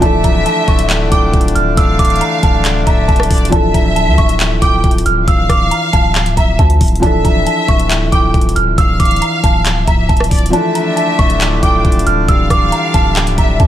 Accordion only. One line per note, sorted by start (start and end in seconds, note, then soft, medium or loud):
0.00 3.49 D3 medium
0.00 3.49 A3 medium
0.00 1.73 D4 medium
1.77 3.51 D4 medium
10.53 13.67 D3 medium
10.53 12.27 A3 medium
10.53 13.67 D4 medium
12.28 13.67 G3 medium